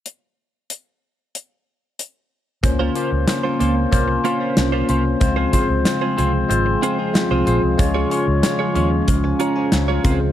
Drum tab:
HH |x-x-x-x-|xxxxxxxx|xxxxxxxx|xxxxxxxx|
SD |--------|--o---o-|--o---o-|--o---o-|
BD |--------|o---o---|oo------|o---o--o|